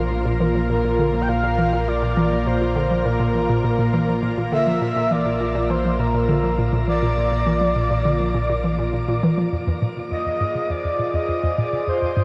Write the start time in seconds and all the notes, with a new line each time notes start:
Already playing: A#1 A#2 A#3 F4 A#4
0.11 A#2
0.26 A#2
0.40 E3
0.55 F3
0.70 A#2 A#4
0.85 A#2
0.99 D3
1.14 F3
1.21 G5
1.29 A#2 F5
1.44 A#2
1.58 E3
1.73 A#2
1.88 A#2 D5
2.02 A#2
2.17 E3
2.32 F3
2.47 A#2 C5
2.61 A#2
2.76 D3
2.91 F3
3.05 A#2 A#4
3.20 A#2
3.35 E3
3.49 A#2
3.64 A#2
3.79 A#2
3.93 E3
4.08 F3
4.23 A#2
4.38 A#2
4.52 D3 E5
4.67 F3
4.82 A#1 A#2
4.96 A#2
5.11 E3 D5
5.26 A#2
5.41 A#2
5.55 A#2
5.70 E3 C5
5.85 F3
6.00 A#2 A#4
6.14 A#2
6.29 D3
6.44 F3
6.58 A#2
6.73 A#2
6.88 E3 D5
7.03 A#2
7.17 A#2
7.32 A#2
7.47 E3
7.61 F3
7.76 A#2
7.91 A#2
8.05 D3
8.20 F3
8.35 A#2
8.49 A#2
8.64 E3
8.79 A#2
8.94 A#2
9.08 A#2
9.23 E3
9.38 F3
9.52 F2 F4 C5
9.67 F2
9.82 A#2 G#4
9.97 C3
10.11 F2 D#5
10.26 F2
10.32 C5
10.41 G#2
10.55 C3
10.70 F2 D5
10.85 F2
10.99 A#2
11.14 F2 D#5
11.29 F2
11.44 F2
11.58 A#2 D5
11.73 C3
11.87 F2 C5
12.02 F2
12.17 G#2